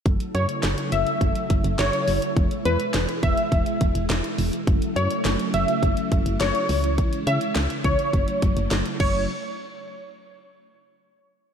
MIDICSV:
0, 0, Header, 1, 5, 480
1, 0, Start_track
1, 0, Key_signature, 3, "minor"
1, 0, Tempo, 576923
1, 48, Time_signature, 4, 2, 24, 8
1, 9600, End_track
2, 0, Start_track
2, 0, Title_t, "Analog polysynth"
2, 0, Program_c, 0, 90
2, 289, Note_on_c, 0, 73, 79
2, 390, Note_off_c, 0, 73, 0
2, 768, Note_on_c, 0, 76, 83
2, 1219, Note_off_c, 0, 76, 0
2, 1489, Note_on_c, 0, 73, 91
2, 1827, Note_off_c, 0, 73, 0
2, 2208, Note_on_c, 0, 71, 80
2, 2309, Note_off_c, 0, 71, 0
2, 2687, Note_on_c, 0, 76, 90
2, 3139, Note_off_c, 0, 76, 0
2, 4128, Note_on_c, 0, 73, 78
2, 4229, Note_off_c, 0, 73, 0
2, 4608, Note_on_c, 0, 76, 85
2, 5059, Note_off_c, 0, 76, 0
2, 5329, Note_on_c, 0, 73, 92
2, 5667, Note_off_c, 0, 73, 0
2, 6049, Note_on_c, 0, 76, 81
2, 6150, Note_off_c, 0, 76, 0
2, 6529, Note_on_c, 0, 73, 90
2, 6980, Note_off_c, 0, 73, 0
2, 7489, Note_on_c, 0, 73, 90
2, 7712, Note_off_c, 0, 73, 0
2, 9600, End_track
3, 0, Start_track
3, 0, Title_t, "String machine"
3, 0, Program_c, 1, 50
3, 48, Note_on_c, 1, 49, 83
3, 48, Note_on_c, 1, 54, 73
3, 48, Note_on_c, 1, 57, 72
3, 48, Note_on_c, 1, 64, 89
3, 1949, Note_off_c, 1, 49, 0
3, 1949, Note_off_c, 1, 54, 0
3, 1949, Note_off_c, 1, 57, 0
3, 1968, Note_on_c, 1, 47, 80
3, 1968, Note_on_c, 1, 52, 71
3, 1968, Note_on_c, 1, 56, 75
3, 3854, Note_off_c, 1, 64, 0
3, 3869, Note_off_c, 1, 47, 0
3, 3869, Note_off_c, 1, 52, 0
3, 3869, Note_off_c, 1, 56, 0
3, 3889, Note_on_c, 1, 64, 91
3, 3890, Note_on_c, 1, 49, 77
3, 3890, Note_on_c, 1, 54, 73
3, 3890, Note_on_c, 1, 57, 72
3, 5552, Note_off_c, 1, 49, 0
3, 5552, Note_off_c, 1, 54, 0
3, 5552, Note_off_c, 1, 57, 0
3, 5567, Note_on_c, 1, 49, 81
3, 5568, Note_on_c, 1, 52, 74
3, 5568, Note_on_c, 1, 56, 74
3, 6756, Note_off_c, 1, 52, 0
3, 6756, Note_off_c, 1, 56, 0
3, 6768, Note_on_c, 1, 54, 69
3, 6768, Note_on_c, 1, 57, 67
3, 7455, Note_off_c, 1, 64, 0
3, 7469, Note_off_c, 1, 49, 0
3, 7477, Note_off_c, 1, 57, 0
3, 7478, Note_off_c, 1, 54, 0
3, 7487, Note_on_c, 1, 49, 75
3, 7487, Note_on_c, 1, 57, 69
3, 7488, Note_on_c, 1, 54, 70
3, 7488, Note_on_c, 1, 64, 84
3, 7711, Note_off_c, 1, 49, 0
3, 7711, Note_off_c, 1, 54, 0
3, 7711, Note_off_c, 1, 57, 0
3, 7711, Note_off_c, 1, 64, 0
3, 9600, End_track
4, 0, Start_track
4, 0, Title_t, "FM bass"
4, 0, Program_c, 2, 39
4, 48, Note_on_c, 2, 30, 109
4, 147, Note_off_c, 2, 30, 0
4, 288, Note_on_c, 2, 42, 103
4, 386, Note_off_c, 2, 42, 0
4, 528, Note_on_c, 2, 30, 98
4, 626, Note_off_c, 2, 30, 0
4, 768, Note_on_c, 2, 30, 101
4, 867, Note_off_c, 2, 30, 0
4, 1007, Note_on_c, 2, 30, 112
4, 1106, Note_off_c, 2, 30, 0
4, 1249, Note_on_c, 2, 30, 99
4, 1348, Note_off_c, 2, 30, 0
4, 1368, Note_on_c, 2, 30, 98
4, 1467, Note_off_c, 2, 30, 0
4, 1488, Note_on_c, 2, 30, 100
4, 1587, Note_off_c, 2, 30, 0
4, 1728, Note_on_c, 2, 30, 97
4, 1827, Note_off_c, 2, 30, 0
4, 1968, Note_on_c, 2, 28, 112
4, 2067, Note_off_c, 2, 28, 0
4, 2208, Note_on_c, 2, 40, 99
4, 2307, Note_off_c, 2, 40, 0
4, 2448, Note_on_c, 2, 28, 102
4, 2547, Note_off_c, 2, 28, 0
4, 2687, Note_on_c, 2, 28, 97
4, 2786, Note_off_c, 2, 28, 0
4, 2927, Note_on_c, 2, 28, 110
4, 3026, Note_off_c, 2, 28, 0
4, 3170, Note_on_c, 2, 28, 98
4, 3268, Note_off_c, 2, 28, 0
4, 3287, Note_on_c, 2, 28, 92
4, 3386, Note_off_c, 2, 28, 0
4, 3407, Note_on_c, 2, 28, 93
4, 3506, Note_off_c, 2, 28, 0
4, 3647, Note_on_c, 2, 28, 106
4, 3746, Note_off_c, 2, 28, 0
4, 3888, Note_on_c, 2, 30, 111
4, 3987, Note_off_c, 2, 30, 0
4, 4127, Note_on_c, 2, 42, 99
4, 4226, Note_off_c, 2, 42, 0
4, 4367, Note_on_c, 2, 30, 101
4, 4466, Note_off_c, 2, 30, 0
4, 4608, Note_on_c, 2, 30, 99
4, 4706, Note_off_c, 2, 30, 0
4, 4847, Note_on_c, 2, 30, 115
4, 4946, Note_off_c, 2, 30, 0
4, 5090, Note_on_c, 2, 30, 97
4, 5188, Note_off_c, 2, 30, 0
4, 5207, Note_on_c, 2, 30, 95
4, 5306, Note_off_c, 2, 30, 0
4, 5327, Note_on_c, 2, 30, 108
4, 5426, Note_off_c, 2, 30, 0
4, 5568, Note_on_c, 2, 37, 101
4, 5864, Note_off_c, 2, 37, 0
4, 6048, Note_on_c, 2, 49, 98
4, 6146, Note_off_c, 2, 49, 0
4, 6288, Note_on_c, 2, 37, 98
4, 6386, Note_off_c, 2, 37, 0
4, 6527, Note_on_c, 2, 37, 95
4, 6626, Note_off_c, 2, 37, 0
4, 6768, Note_on_c, 2, 30, 110
4, 6866, Note_off_c, 2, 30, 0
4, 7010, Note_on_c, 2, 30, 96
4, 7108, Note_off_c, 2, 30, 0
4, 7128, Note_on_c, 2, 30, 97
4, 7227, Note_off_c, 2, 30, 0
4, 7248, Note_on_c, 2, 30, 104
4, 7346, Note_off_c, 2, 30, 0
4, 7488, Note_on_c, 2, 30, 106
4, 7711, Note_off_c, 2, 30, 0
4, 9600, End_track
5, 0, Start_track
5, 0, Title_t, "Drums"
5, 48, Note_on_c, 9, 36, 120
5, 48, Note_on_c, 9, 42, 67
5, 131, Note_off_c, 9, 36, 0
5, 131, Note_off_c, 9, 42, 0
5, 169, Note_on_c, 9, 42, 60
5, 252, Note_off_c, 9, 42, 0
5, 288, Note_on_c, 9, 42, 82
5, 372, Note_off_c, 9, 42, 0
5, 406, Note_on_c, 9, 42, 53
5, 489, Note_off_c, 9, 42, 0
5, 525, Note_on_c, 9, 38, 109
5, 525, Note_on_c, 9, 39, 92
5, 526, Note_on_c, 9, 42, 70
5, 609, Note_off_c, 9, 38, 0
5, 609, Note_off_c, 9, 39, 0
5, 609, Note_off_c, 9, 42, 0
5, 648, Note_on_c, 9, 42, 54
5, 731, Note_off_c, 9, 42, 0
5, 767, Note_on_c, 9, 42, 80
5, 850, Note_off_c, 9, 42, 0
5, 887, Note_on_c, 9, 42, 45
5, 970, Note_off_c, 9, 42, 0
5, 1007, Note_on_c, 9, 36, 88
5, 1008, Note_on_c, 9, 42, 71
5, 1090, Note_off_c, 9, 36, 0
5, 1091, Note_off_c, 9, 42, 0
5, 1127, Note_on_c, 9, 42, 56
5, 1210, Note_off_c, 9, 42, 0
5, 1248, Note_on_c, 9, 42, 86
5, 1249, Note_on_c, 9, 36, 94
5, 1331, Note_off_c, 9, 42, 0
5, 1333, Note_off_c, 9, 36, 0
5, 1368, Note_on_c, 9, 42, 66
5, 1451, Note_off_c, 9, 42, 0
5, 1488, Note_on_c, 9, 42, 77
5, 1489, Note_on_c, 9, 38, 111
5, 1489, Note_on_c, 9, 39, 88
5, 1571, Note_off_c, 9, 42, 0
5, 1572, Note_off_c, 9, 38, 0
5, 1572, Note_off_c, 9, 39, 0
5, 1608, Note_on_c, 9, 42, 56
5, 1691, Note_off_c, 9, 42, 0
5, 1727, Note_on_c, 9, 46, 78
5, 1810, Note_off_c, 9, 46, 0
5, 1849, Note_on_c, 9, 42, 52
5, 1932, Note_off_c, 9, 42, 0
5, 1968, Note_on_c, 9, 36, 120
5, 1968, Note_on_c, 9, 42, 70
5, 2051, Note_off_c, 9, 36, 0
5, 2051, Note_off_c, 9, 42, 0
5, 2089, Note_on_c, 9, 42, 59
5, 2173, Note_off_c, 9, 42, 0
5, 2208, Note_on_c, 9, 42, 81
5, 2292, Note_off_c, 9, 42, 0
5, 2326, Note_on_c, 9, 42, 55
5, 2410, Note_off_c, 9, 42, 0
5, 2446, Note_on_c, 9, 38, 110
5, 2446, Note_on_c, 9, 39, 91
5, 2446, Note_on_c, 9, 42, 69
5, 2529, Note_off_c, 9, 38, 0
5, 2529, Note_off_c, 9, 39, 0
5, 2530, Note_off_c, 9, 42, 0
5, 2568, Note_on_c, 9, 42, 52
5, 2651, Note_off_c, 9, 42, 0
5, 2687, Note_on_c, 9, 36, 93
5, 2687, Note_on_c, 9, 42, 79
5, 2770, Note_off_c, 9, 36, 0
5, 2770, Note_off_c, 9, 42, 0
5, 2808, Note_on_c, 9, 42, 46
5, 2891, Note_off_c, 9, 42, 0
5, 2927, Note_on_c, 9, 36, 90
5, 2929, Note_on_c, 9, 42, 71
5, 3011, Note_off_c, 9, 36, 0
5, 3012, Note_off_c, 9, 42, 0
5, 3047, Note_on_c, 9, 42, 55
5, 3130, Note_off_c, 9, 42, 0
5, 3169, Note_on_c, 9, 42, 82
5, 3170, Note_on_c, 9, 36, 91
5, 3252, Note_off_c, 9, 42, 0
5, 3253, Note_off_c, 9, 36, 0
5, 3288, Note_on_c, 9, 42, 67
5, 3371, Note_off_c, 9, 42, 0
5, 3409, Note_on_c, 9, 38, 107
5, 3409, Note_on_c, 9, 39, 91
5, 3409, Note_on_c, 9, 42, 73
5, 3492, Note_off_c, 9, 38, 0
5, 3492, Note_off_c, 9, 39, 0
5, 3492, Note_off_c, 9, 42, 0
5, 3529, Note_on_c, 9, 42, 57
5, 3612, Note_off_c, 9, 42, 0
5, 3648, Note_on_c, 9, 46, 77
5, 3731, Note_off_c, 9, 46, 0
5, 3770, Note_on_c, 9, 42, 53
5, 3853, Note_off_c, 9, 42, 0
5, 3888, Note_on_c, 9, 36, 122
5, 3889, Note_on_c, 9, 42, 67
5, 3972, Note_off_c, 9, 36, 0
5, 3972, Note_off_c, 9, 42, 0
5, 4010, Note_on_c, 9, 42, 59
5, 4094, Note_off_c, 9, 42, 0
5, 4129, Note_on_c, 9, 42, 81
5, 4213, Note_off_c, 9, 42, 0
5, 4247, Note_on_c, 9, 42, 57
5, 4331, Note_off_c, 9, 42, 0
5, 4367, Note_on_c, 9, 38, 112
5, 4367, Note_on_c, 9, 39, 94
5, 4367, Note_on_c, 9, 42, 67
5, 4450, Note_off_c, 9, 38, 0
5, 4450, Note_off_c, 9, 39, 0
5, 4450, Note_off_c, 9, 42, 0
5, 4489, Note_on_c, 9, 42, 55
5, 4572, Note_off_c, 9, 42, 0
5, 4608, Note_on_c, 9, 42, 80
5, 4691, Note_off_c, 9, 42, 0
5, 4728, Note_on_c, 9, 42, 45
5, 4811, Note_off_c, 9, 42, 0
5, 4847, Note_on_c, 9, 36, 89
5, 4849, Note_on_c, 9, 42, 72
5, 4931, Note_off_c, 9, 36, 0
5, 4933, Note_off_c, 9, 42, 0
5, 4967, Note_on_c, 9, 42, 56
5, 5050, Note_off_c, 9, 42, 0
5, 5089, Note_on_c, 9, 42, 83
5, 5090, Note_on_c, 9, 36, 94
5, 5172, Note_off_c, 9, 42, 0
5, 5173, Note_off_c, 9, 36, 0
5, 5208, Note_on_c, 9, 42, 66
5, 5291, Note_off_c, 9, 42, 0
5, 5329, Note_on_c, 9, 42, 73
5, 5330, Note_on_c, 9, 38, 108
5, 5330, Note_on_c, 9, 39, 91
5, 5412, Note_off_c, 9, 42, 0
5, 5413, Note_off_c, 9, 38, 0
5, 5413, Note_off_c, 9, 39, 0
5, 5448, Note_on_c, 9, 42, 54
5, 5531, Note_off_c, 9, 42, 0
5, 5568, Note_on_c, 9, 46, 76
5, 5651, Note_off_c, 9, 46, 0
5, 5690, Note_on_c, 9, 42, 51
5, 5773, Note_off_c, 9, 42, 0
5, 5808, Note_on_c, 9, 36, 120
5, 5808, Note_on_c, 9, 42, 71
5, 5892, Note_off_c, 9, 36, 0
5, 5892, Note_off_c, 9, 42, 0
5, 5929, Note_on_c, 9, 42, 59
5, 6013, Note_off_c, 9, 42, 0
5, 6048, Note_on_c, 9, 42, 81
5, 6132, Note_off_c, 9, 42, 0
5, 6166, Note_on_c, 9, 42, 55
5, 6249, Note_off_c, 9, 42, 0
5, 6285, Note_on_c, 9, 38, 110
5, 6285, Note_on_c, 9, 39, 93
5, 6286, Note_on_c, 9, 42, 70
5, 6368, Note_off_c, 9, 38, 0
5, 6368, Note_off_c, 9, 39, 0
5, 6369, Note_off_c, 9, 42, 0
5, 6408, Note_on_c, 9, 42, 56
5, 6491, Note_off_c, 9, 42, 0
5, 6526, Note_on_c, 9, 42, 80
5, 6527, Note_on_c, 9, 36, 92
5, 6610, Note_off_c, 9, 36, 0
5, 6610, Note_off_c, 9, 42, 0
5, 6647, Note_on_c, 9, 42, 46
5, 6730, Note_off_c, 9, 42, 0
5, 6767, Note_on_c, 9, 36, 91
5, 6769, Note_on_c, 9, 42, 72
5, 6851, Note_off_c, 9, 36, 0
5, 6852, Note_off_c, 9, 42, 0
5, 6887, Note_on_c, 9, 42, 56
5, 6970, Note_off_c, 9, 42, 0
5, 7009, Note_on_c, 9, 42, 85
5, 7010, Note_on_c, 9, 36, 96
5, 7092, Note_off_c, 9, 42, 0
5, 7093, Note_off_c, 9, 36, 0
5, 7127, Note_on_c, 9, 42, 66
5, 7210, Note_off_c, 9, 42, 0
5, 7248, Note_on_c, 9, 38, 108
5, 7248, Note_on_c, 9, 39, 89
5, 7248, Note_on_c, 9, 42, 76
5, 7331, Note_off_c, 9, 42, 0
5, 7332, Note_off_c, 9, 38, 0
5, 7332, Note_off_c, 9, 39, 0
5, 7368, Note_on_c, 9, 42, 56
5, 7451, Note_off_c, 9, 42, 0
5, 7488, Note_on_c, 9, 36, 104
5, 7488, Note_on_c, 9, 49, 86
5, 7571, Note_off_c, 9, 36, 0
5, 7571, Note_off_c, 9, 49, 0
5, 9600, End_track
0, 0, End_of_file